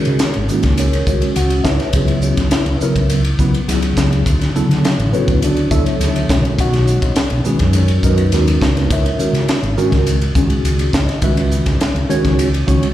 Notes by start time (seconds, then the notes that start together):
Already playing: D#3 G#3 C#4 F#4 G#4 A#4 C#5
0.05 C#3, ride
0.19 snare, hi-hat pedal, ride
0.34 G#1, ride
0.48 D#3 G#3 A#3 C#4 D#4 E4 F#4 G#4 A#4, hi-hat pedal
0.63 C#2, kick, snare, ride
0.78 C#4 G#4 A#4 C#5, hi-hat pedal, ride
0.93 ride
1.07 C#2 D#3 G#3 C#4 F#4 C#5, kick, hi-hat pedal
1.22 ride
1.36 C#2 F#4 F#5, hi-hat pedal, ride
1.50 ride
1.64 C#2 E4 B4 C#5 E5, kick, snare, hi-hat pedal
1.80 snare, ride
1.93 C#2 C#3 F#3 B3 E4 G#4, kick, hi-hat pedal, ride
2.08 ride
2.21 C#4 F#4 G#4 C#5, hi-hat pedal
2.37 C#2, kick, snare, ride
2.51 E4 B4 C#5 E5, snare, hi-hat pedal, ride
2.66 C#2, ride
2.80 C#3 F#3 B3 E4 A#4, muted fretless electric bass stroke, hi-hat pedal
2.95 C#2, kick, ride
3.10 hi-hat pedal, ride
3.24 ride
3.39 C#2 C#3 F#3 B3 E4 B4, kick, hi-hat pedal
3.54 ride
3.68 C#2 C#3 F#3 B3 E4 G#4, snare, hi-hat pedal, ride
3.82 ride
3.97 C#2, kick, snare, hi-hat pedal
4.12 ride
4.26 D2, kick, hi-hat pedal, ride
4.41 snare, ride
4.55 C#3 F#3 B3 E4 A4, hi-hat pedal
4.69 D3, snare, ride
4.84 snare, hi-hat pedal, ride
4.98 A1, ride
5.13 C#3 F#3 B3 C#4 E4 F#4 A4 B4 C#5, hi-hat pedal
5.28 D2, kick, ride
5.42 D4 F#4 A4 D5, hi-hat pedal, ride
5.56 ride
5.71 D2 C#3 F#3 B3 E4 A4 C#5 E5, kick, hi-hat pedal
5.86 ride
6.00 D2, snare, hi-hat pedal, ride
6.16 ride
6.29 B1 D#3 G#3 C#4 F#4 A#4 C#5, kick, snare, hi-hat pedal
6.45 ride
6.58 B1 F#4 C#5 D#5 F#5, kick, hi-hat pedal, ride
6.73 snare, ride
6.87 hi-hat pedal
7.02 B1, kick, ride
7.16 muted fretless electric bass stroke, snare, hi-hat pedal, ride
7.30 B1, ride
7.44 D#3 G#3 B3 C#4 D#4 F#4 G#4 B4, hi-hat pedal
7.59 F#2, kick, snare, ride
7.73 F#4 C#5, hi-hat pedal, ride
7.77 C#4 A#4
7.88 ride
8.03 F#2 D#3 G#3 C#4 D#4 F#4 A#4 B4 D#5, kick, hi-hat pedal
8.17 ride
8.32 D#2 D#3 G#3 C#4 F#4 A#4, snare, hi-hat pedal, ride
8.48 ride
8.61 C#2 B3 D#4 F#4 B4, kick, snare, hi-hat pedal
8.77 snare, ride
8.90 C#2 E4 A#4 C#5 E5, kick, hi-hat pedal, ride
9.06 ride
9.19 D#3 G#3 C#4 F#4 A#4, muted fretless electric bass stroke, hi-hat pedal
9.33 C#3, snare, ride
9.48 snare, hi-hat pedal, ride
9.63 G#1, ride
9.77 D#3 G#3 C#4 F#4 A#4, hi-hat pedal
9.92 C#2, kick, snare, ride
10.07 hi-hat pedal, ride
10.21 ride
10.35 C#2 D#3 G#3 C#4 F#4 G#4, kick, hi-hat pedal
10.50 ride
10.64 C#2, hi-hat pedal, ride
10.79 ride
10.93 C#2 D#5, kick, snare, hi-hat pedal
11.09 snare, ride
11.22 C#2 D#3 G#3 C#4 F#4 B4 E5, kick, hi-hat pedal, ride
11.37 ride
11.51 hi-hat pedal
11.66 C#2, kick, snare, ride
11.80 muted fretless electric bass stroke, snare, hi-hat pedal, ride
11.95 C#2, ride
12.09 D#3 G#3 C#4 F#4 C#5, hi-hat pedal
12.25 C#2, kick, snare, ride
12.39 hi-hat pedal, ride
12.54 ride
12.67 C#2 D#3 G#3 C#4 F#4 C#5, kick, hi-hat pedal
12.83 ride